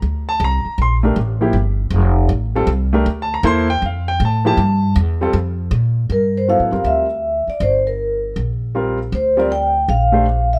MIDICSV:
0, 0, Header, 1, 5, 480
1, 0, Start_track
1, 0, Tempo, 379027
1, 39, Time_signature, 4, 2, 24, 8
1, 13412, End_track
2, 0, Start_track
2, 0, Title_t, "Vibraphone"
2, 0, Program_c, 0, 11
2, 7752, Note_on_c, 0, 70, 88
2, 8058, Note_off_c, 0, 70, 0
2, 8073, Note_on_c, 0, 72, 82
2, 8139, Note_off_c, 0, 72, 0
2, 8226, Note_on_c, 0, 77, 92
2, 8693, Note_on_c, 0, 76, 84
2, 8707, Note_off_c, 0, 77, 0
2, 9494, Note_on_c, 0, 74, 84
2, 9503, Note_off_c, 0, 76, 0
2, 9640, Note_off_c, 0, 74, 0
2, 9657, Note_on_c, 0, 72, 83
2, 9967, Note_on_c, 0, 70, 69
2, 9970, Note_off_c, 0, 72, 0
2, 10563, Note_off_c, 0, 70, 0
2, 11587, Note_on_c, 0, 72, 90
2, 11895, Note_off_c, 0, 72, 0
2, 11901, Note_on_c, 0, 74, 86
2, 12055, Note_on_c, 0, 79, 103
2, 12059, Note_off_c, 0, 74, 0
2, 12533, Note_on_c, 0, 77, 95
2, 12541, Note_off_c, 0, 79, 0
2, 13267, Note_off_c, 0, 77, 0
2, 13338, Note_on_c, 0, 76, 83
2, 13412, Note_off_c, 0, 76, 0
2, 13412, End_track
3, 0, Start_track
3, 0, Title_t, "Grand piano"
3, 0, Program_c, 1, 0
3, 363, Note_on_c, 1, 81, 94
3, 520, Note_off_c, 1, 81, 0
3, 562, Note_on_c, 1, 82, 90
3, 989, Note_off_c, 1, 82, 0
3, 1034, Note_on_c, 1, 84, 89
3, 1212, Note_off_c, 1, 84, 0
3, 1305, Note_on_c, 1, 57, 68
3, 1312, Note_on_c, 1, 62, 62
3, 1321, Note_on_c, 1, 70, 73
3, 1324, Note_on_c, 1, 67, 56
3, 1460, Note_off_c, 1, 57, 0
3, 1464, Note_off_c, 1, 62, 0
3, 1468, Note_off_c, 1, 70, 0
3, 1470, Note_off_c, 1, 67, 0
3, 1782, Note_on_c, 1, 53, 67
3, 1785, Note_on_c, 1, 58, 62
3, 1791, Note_on_c, 1, 64, 65
3, 1801, Note_on_c, 1, 67, 72
3, 1939, Note_off_c, 1, 53, 0
3, 1940, Note_off_c, 1, 58, 0
3, 1943, Note_off_c, 1, 64, 0
3, 1948, Note_off_c, 1, 67, 0
3, 3234, Note_on_c, 1, 55, 73
3, 3235, Note_on_c, 1, 60, 69
3, 3246, Note_on_c, 1, 69, 87
3, 3249, Note_on_c, 1, 65, 69
3, 3385, Note_off_c, 1, 55, 0
3, 3386, Note_off_c, 1, 60, 0
3, 3391, Note_off_c, 1, 69, 0
3, 3392, Note_off_c, 1, 65, 0
3, 3708, Note_on_c, 1, 57, 76
3, 3712, Note_on_c, 1, 62, 69
3, 3722, Note_on_c, 1, 67, 66
3, 3729, Note_on_c, 1, 70, 78
3, 3862, Note_off_c, 1, 57, 0
3, 3864, Note_off_c, 1, 62, 0
3, 3869, Note_off_c, 1, 67, 0
3, 3872, Note_off_c, 1, 70, 0
3, 4080, Note_on_c, 1, 81, 85
3, 4217, Note_off_c, 1, 81, 0
3, 4228, Note_on_c, 1, 82, 82
3, 4357, Note_on_c, 1, 58, 85
3, 4360, Note_on_c, 1, 64, 81
3, 4360, Note_on_c, 1, 69, 79
3, 4370, Note_off_c, 1, 82, 0
3, 4372, Note_on_c, 1, 72, 94
3, 4392, Note_on_c, 1, 84, 103
3, 4641, Note_off_c, 1, 58, 0
3, 4642, Note_off_c, 1, 64, 0
3, 4642, Note_off_c, 1, 69, 0
3, 4648, Note_off_c, 1, 72, 0
3, 4680, Note_off_c, 1, 84, 0
3, 4686, Note_on_c, 1, 79, 100
3, 4843, Note_off_c, 1, 79, 0
3, 4884, Note_on_c, 1, 77, 76
3, 5166, Note_off_c, 1, 77, 0
3, 5169, Note_on_c, 1, 79, 96
3, 5324, Note_off_c, 1, 79, 0
3, 5382, Note_on_c, 1, 81, 81
3, 5632, Note_on_c, 1, 53, 71
3, 5635, Note_on_c, 1, 58, 60
3, 5641, Note_off_c, 1, 81, 0
3, 5643, Note_on_c, 1, 64, 64
3, 5649, Note_on_c, 1, 67, 77
3, 5660, Note_on_c, 1, 81, 93
3, 5784, Note_off_c, 1, 53, 0
3, 5785, Note_off_c, 1, 58, 0
3, 5789, Note_off_c, 1, 64, 0
3, 5792, Note_off_c, 1, 67, 0
3, 6250, Note_off_c, 1, 81, 0
3, 6598, Note_on_c, 1, 55, 74
3, 6606, Note_on_c, 1, 60, 75
3, 6614, Note_on_c, 1, 65, 68
3, 6620, Note_on_c, 1, 69, 80
3, 6747, Note_off_c, 1, 55, 0
3, 6750, Note_off_c, 1, 60, 0
3, 6754, Note_off_c, 1, 65, 0
3, 6757, Note_off_c, 1, 69, 0
3, 8207, Note_on_c, 1, 54, 51
3, 8210, Note_on_c, 1, 59, 51
3, 8216, Note_on_c, 1, 64, 50
3, 8227, Note_on_c, 1, 69, 61
3, 8485, Note_off_c, 1, 54, 0
3, 8486, Note_off_c, 1, 59, 0
3, 8489, Note_off_c, 1, 64, 0
3, 8495, Note_off_c, 1, 69, 0
3, 8509, Note_on_c, 1, 55, 48
3, 8511, Note_on_c, 1, 60, 46
3, 8512, Note_on_c, 1, 65, 45
3, 8521, Note_on_c, 1, 70, 60
3, 8929, Note_off_c, 1, 55, 0
3, 8929, Note_off_c, 1, 60, 0
3, 8930, Note_off_c, 1, 65, 0
3, 8935, Note_off_c, 1, 70, 0
3, 11077, Note_on_c, 1, 55, 66
3, 11083, Note_on_c, 1, 65, 57
3, 11086, Note_on_c, 1, 60, 58
3, 11094, Note_on_c, 1, 70, 66
3, 11360, Note_off_c, 1, 55, 0
3, 11363, Note_off_c, 1, 65, 0
3, 11364, Note_off_c, 1, 60, 0
3, 11368, Note_off_c, 1, 70, 0
3, 11864, Note_on_c, 1, 55, 70
3, 11871, Note_on_c, 1, 60, 66
3, 11879, Note_on_c, 1, 65, 60
3, 11890, Note_on_c, 1, 70, 72
3, 12019, Note_off_c, 1, 55, 0
3, 12022, Note_off_c, 1, 60, 0
3, 12026, Note_off_c, 1, 65, 0
3, 12032, Note_off_c, 1, 70, 0
3, 12816, Note_on_c, 1, 57, 64
3, 12827, Note_on_c, 1, 62, 58
3, 12828, Note_on_c, 1, 67, 58
3, 12837, Note_on_c, 1, 72, 68
3, 12975, Note_off_c, 1, 57, 0
3, 12980, Note_off_c, 1, 62, 0
3, 12980, Note_off_c, 1, 67, 0
3, 12985, Note_off_c, 1, 72, 0
3, 13412, End_track
4, 0, Start_track
4, 0, Title_t, "Upright bass"
4, 0, Program_c, 2, 32
4, 28, Note_on_c, 2, 38, 80
4, 497, Note_off_c, 2, 38, 0
4, 504, Note_on_c, 2, 36, 93
4, 802, Note_off_c, 2, 36, 0
4, 987, Note_on_c, 2, 34, 85
4, 1459, Note_off_c, 2, 34, 0
4, 1468, Note_on_c, 2, 33, 90
4, 1929, Note_off_c, 2, 33, 0
4, 1936, Note_on_c, 2, 31, 86
4, 2404, Note_off_c, 2, 31, 0
4, 2411, Note_on_c, 2, 29, 95
4, 2892, Note_off_c, 2, 29, 0
4, 2898, Note_on_c, 2, 33, 86
4, 3371, Note_off_c, 2, 33, 0
4, 3378, Note_on_c, 2, 36, 90
4, 3855, Note_off_c, 2, 36, 0
4, 3873, Note_on_c, 2, 38, 89
4, 4339, Note_off_c, 2, 38, 0
4, 4346, Note_on_c, 2, 40, 97
4, 4819, Note_off_c, 2, 40, 0
4, 4836, Note_on_c, 2, 41, 82
4, 5304, Note_off_c, 2, 41, 0
4, 5317, Note_on_c, 2, 45, 96
4, 5782, Note_off_c, 2, 45, 0
4, 5789, Note_on_c, 2, 43, 87
4, 6260, Note_off_c, 2, 43, 0
4, 6275, Note_on_c, 2, 40, 99
4, 6743, Note_off_c, 2, 40, 0
4, 6752, Note_on_c, 2, 41, 93
4, 7222, Note_off_c, 2, 41, 0
4, 7231, Note_on_c, 2, 46, 96
4, 7701, Note_off_c, 2, 46, 0
4, 7719, Note_on_c, 2, 43, 82
4, 8315, Note_off_c, 2, 43, 0
4, 8352, Note_on_c, 2, 45, 55
4, 8505, Note_off_c, 2, 45, 0
4, 8516, Note_on_c, 2, 42, 64
4, 8659, Note_off_c, 2, 42, 0
4, 8667, Note_on_c, 2, 38, 78
4, 9415, Note_off_c, 2, 38, 0
4, 9628, Note_on_c, 2, 31, 87
4, 10546, Note_off_c, 2, 31, 0
4, 10587, Note_on_c, 2, 34, 79
4, 11505, Note_off_c, 2, 34, 0
4, 11553, Note_on_c, 2, 38, 83
4, 12468, Note_off_c, 2, 38, 0
4, 12517, Note_on_c, 2, 34, 86
4, 13412, Note_off_c, 2, 34, 0
4, 13412, End_track
5, 0, Start_track
5, 0, Title_t, "Muted upright bass strokes"
5, 823, Note_on_c, 9, 29, 38
5, 950, Note_off_c, 9, 29, 0
5, 9464, Note_on_c, 9, 29, 39
5, 9590, Note_off_c, 9, 29, 0
5, 13412, End_track
0, 0, End_of_file